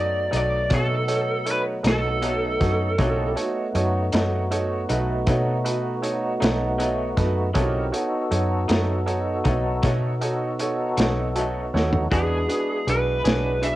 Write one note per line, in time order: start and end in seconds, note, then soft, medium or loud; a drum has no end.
0.00 0.29 F#2 medium
0.00 2.96 F#3 medium
0.00 2.95 A3 medium
0.00 2.96 B3 medium
0.00 0.22 D#4 medium
0.00 2.96 D#4 medium
0.00 0.22 F#4 soft
0.00 0.23 A4 soft
0.00 0.36 D5 medium
0.00 0.23 D#5 medium
0.31 0.68 B1 medium
0.31 0.56 A3 soft
0.31 0.60 D#4 soft
0.31 0.55 D#4 soft
0.31 0.60 F#4 soft
0.31 0.60 A4 soft
0.31 0.61 D#5 soft
0.31 closed hi-hat soft
0.35 0.57 F#3 soft
0.35 0.70 D5 medium
0.70 1.81 B2 medium
0.70 0.94 B2 medium
0.70 0.95 F#3 medium
0.70 0.95 A3 medium
0.70 0.99 D#4 soft
0.70 0.99 F#4 soft
0.70 0.99 A4 soft
0.70 0.99 C#5 medium
0.70 kick medium
0.70 closed hi-hat medium
0.74 0.95 D#4 medium
0.74 1.51 A4 medium
1.08 1.37 D#4 soft
1.08 1.37 F#4 soft
1.08 1.37 A4 soft
1.08 1.37 C#5 soft
1.08 closed hi-hat medium
1.45 1.75 D#4 soft
1.45 1.75 F#4 soft
1.45 1.75 A4 soft
1.45 1.75 C#5 medium
1.45 closed hi-hat medium
1.51 1.61 B4 medium
1.83 2.57 B1 medium
1.83 2.08 A3 soft
1.83 2.12 D#4 soft
1.83 2.07 D#4 medium
1.83 2.13 F#4 soft
1.83 2.13 A4 soft
1.83 2.13 D#5 soft
1.83 snare medium
1.83 closed hi-hat medium
1.88 2.09 F#3 soft
1.88 3.35 A4 medium
2.22 2.45 B2 medium
2.22 2.46 F#3 medium
2.22 2.46 A3 medium
2.22 2.51 D#4 soft
2.22 2.47 D#4 medium
2.22 2.51 F#4 soft
2.22 2.51 A4 soft
2.22 2.51 C#5 soft
2.22 closed hi-hat soft
2.60 2.96 F#2 medium
2.60 2.89 D#4 soft
2.60 2.89 F#4 soft
2.60 2.89 A4 soft
2.60 2.90 C#5 medium
2.60 kick medium
2.60 snare soft
2.60 closed hi-hat soft
2.98 3.34 B1 medium
2.98 3.22 B2 medium
2.98 3.23 F#3 medium
2.98 3.23 A3 medium
2.98 3.37 A#3 medium
2.98 3.37 C4 medium
2.98 3.27 D#4 medium
2.98 3.23 D#4 medium
2.98 3.37 E4 medium
2.98 3.27 F#4 medium
2.98 3.37 G4 medium
2.98 3.27 A4 medium
2.98 3.27 C#5 medium
2.98 kick medium
2.98 closed hi-hat medium
3.36 7.51 A3 medium
3.36 7.51 B3 medium
3.36 3.65 D#4 medium
3.36 7.51 D#4 medium
3.36 3.65 F#4 soft
3.36 7.51 F#4 medium
3.36 3.65 A4 soft
3.36 3.65 C#5 medium
3.36 closed hi-hat soft
3.75 4.10 F#2 medium
3.75 4.03 D#4 medium
3.75 4.04 F#4 medium
3.75 4.04 A4 medium
3.75 4.04 C#5 medium
3.75 closed hi-hat medium
4.12 4.85 F#2 medium
4.12 4.37 F#3 soft
4.12 4.36 A3 soft
4.12 4.36 D#4 medium
4.12 4.41 D#4 medium
4.12 4.42 F#4 medium
4.12 4.42 A4 medium
4.12 4.42 C#5 medium
4.12 snare medium
4.12 closed hi-hat medium
4.51 4.79 D#4 medium
4.51 4.80 F#4 medium
4.51 4.79 A4 medium
4.51 4.80 C#5 medium
4.51 closed hi-hat medium
4.89 5.24 B1 medium
4.89 5.13 F#3 soft
4.89 5.12 A3 medium
4.89 5.12 D#4 medium
4.89 5.18 D#4 medium
4.89 5.18 F#4 medium
4.89 5.18 A4 soft
4.89 5.18 B4 medium
4.89 closed hi-hat medium
5.27 6.37 B2 medium
5.27 5.50 B2 medium
5.27 5.51 F#3 medium
5.27 5.51 A3 medium
5.27 5.55 D#4 medium
5.27 5.51 D#4 medium
5.27 5.55 F#4 medium
5.27 5.56 A4 medium
5.27 5.56 C#5 medium
5.27 kick medium
5.27 closed hi-hat medium
5.64 5.93 D#4 medium
5.64 5.93 F#4 medium
5.64 5.93 A4 medium
5.64 5.93 B4 medium
5.64 closed hi-hat medium
6.02 6.31 D#4 medium
6.02 6.31 F#4 medium
6.02 6.31 A4 medium
6.02 6.31 C#5 medium
6.02 closed hi-hat medium
6.40 7.13 B1 medium
6.40 6.65 F#3 soft
6.40 6.64 A3 soft
6.40 6.63 D#4 medium
6.40 6.69 D#4 soft
6.40 6.69 F#4 soft
6.40 6.69 A4 soft
6.40 6.70 C#5 medium
6.40 closed hi-hat medium
6.44 snare loud
6.78 7.02 B2 medium
6.78 7.02 F#3 medium
6.78 7.03 A3 medium
6.78 7.07 D#4 medium
6.78 7.03 D#4 medium
6.78 7.07 F#4 medium
6.78 7.07 A4 soft
6.78 7.08 C#5 medium
6.78 closed hi-hat medium
7.17 7.52 F#2 medium
7.17 7.45 D#4 medium
7.17 7.46 F#4 medium
7.17 7.45 A4 medium
7.17 7.45 B4 medium
7.17 kick medium
7.17 snare soft
7.17 closed hi-hat medium
7.54 7.90 B1 medium
7.54 7.77 B2 medium
7.54 7.78 F#3 medium
7.54 7.78 A3 medium
7.54 7.94 C4 medium
7.54 7.83 D#4 medium
7.54 7.78 D#4 medium
7.54 7.94 E4 soft
7.54 7.83 F#4 medium
7.54 7.94 G4 medium
7.54 7.83 A4 medium
7.54 7.94 A#4 medium
7.54 7.83 C#5 medium
7.54 kick medium
7.54 closed hi-hat medium
7.92 12.08 B3 medium
7.92 8.21 D#4 medium
7.92 12.08 D#4 medium
7.92 8.21 F#4 soft
7.92 12.08 F#4 medium
7.92 8.21 A4 medium
7.92 12.08 A4 medium
7.92 8.21 C#5 medium
7.92 closed hi-hat medium
8.31 8.66 F#2 medium
8.31 8.59 D#4 medium
8.31 8.59 F#4 soft
8.31 8.59 A4 medium
8.31 8.60 C#5 medium
8.31 closed hi-hat medium
8.68 9.41 F#2 medium
8.68 8.93 F#3 soft
8.68 8.92 A3 soft
8.68 8.91 D#4 medium
8.68 8.97 D#4 medium
8.68 8.97 F#4 soft
8.68 8.97 A4 soft
8.68 8.98 C#5 medium
8.68 snare medium
8.68 closed hi-hat medium
9.06 9.35 D#4 medium
9.06 9.35 F#4 soft
9.06 9.35 A4 medium
9.06 9.35 C#5 medium
9.06 closed hi-hat medium
9.44 9.80 B1 medium
9.44 9.69 F#3 soft
9.44 9.68 A3 medium
9.44 9.73 D#4 medium
9.44 9.67 D#4 medium
9.44 9.73 F#4 soft
9.44 9.73 A4 medium
9.44 9.74 C#5 medium
9.44 kick medium
9.44 closed hi-hat medium
9.82 10.05 B2 medium
9.82 10.93 B2 medium
9.82 10.06 F#3 medium
9.82 10.06 A3 medium
9.82 10.11 D#4 medium
9.82 10.06 D#4 medium
9.82 10.11 F#4 medium
9.82 10.12 A4 soft
9.82 10.12 C#5 medium
9.82 kick medium
9.82 snare soft
9.82 closed hi-hat medium
10.21 10.49 D#4 medium
10.21 10.50 F#4 medium
10.21 10.50 A4 soft
10.21 10.50 C#5 medium
10.21 closed hi-hat soft
10.59 10.88 D#4 medium
10.59 10.88 F#4 soft
10.59 10.88 A4 medium
10.59 10.88 C#5 medium
10.59 closed hi-hat medium
10.97 11.69 B1 medium
10.97 11.21 F#3 soft
10.97 11.21 A3 soft
10.97 11.20 D#4 medium
10.97 11.26 D#4 medium
10.97 11.26 F#4 soft
10.97 11.26 A4 soft
10.97 11.26 C#5 medium
10.97 snare loud
10.97 closed hi-hat medium
11.35 11.58 B2 soft
11.35 11.59 F#3 medium
11.35 11.60 A3 medium
11.35 11.64 D#4 medium
11.35 11.60 D#4 medium
11.35 11.64 F#4 soft
11.35 11.64 A4 soft
11.35 11.64 C#5 medium
11.35 11.71 A5 soft
11.35 closed hi-hat medium
11.74 12.08 D#2 medium
11.74 12.02 D#4 medium
11.74 12.02 F#4 soft
11.74 12.02 A4 medium
11.74 12.02 C#5 medium
11.74 12.09 F#5 soft
11.74 snare medium
11.93 floor tom medium
12.11 12.46 E2 medium
12.11 12.34 E3 medium
12.11 13.76 G#3 medium
12.11 13.76 B3 medium
12.11 12.34 B3 medium
12.11 12.39 D4 medium
12.11 13.76 D4 soft
12.11 12.34 D4 medium
12.11 13.76 E4 medium
12.11 12.40 F#4 medium
12.11 12.40 G#4 medium
12.11 12.35 G#4 medium
12.11 12.89 G#4 medium
12.11 12.40 B4 medium
12.11 kick medium
12.11 closed hi-hat medium
12.48 12.77 D4 soft
12.48 12.77 F#4 soft
12.48 12.77 G#4 soft
12.48 12.78 B4 soft
12.48 closed hi-hat medium
12.87 13.22 B1 medium
12.87 13.16 D4 soft
12.87 13.16 F#4 soft
12.87 13.15 G#4 soft
12.87 13.16 B4 medium
12.87 13.67 B4 medium
12.87 closed hi-hat medium
13.24 13.76 B1 medium
13.24 13.49 B3 soft
13.24 13.53 D4 soft
13.24 13.48 D4 soft
13.24 13.53 F#4 soft
13.24 13.47 G#4 soft
13.24 13.53 G#4 soft
13.24 13.53 C#5 soft
13.24 snare medium
13.24 closed hi-hat medium
13.62 13.76 D4 soft
13.62 13.76 F#4 soft
13.62 13.76 G#4 soft
13.62 13.76 B4 soft
13.62 13.76 E5 medium
13.62 closed hi-hat medium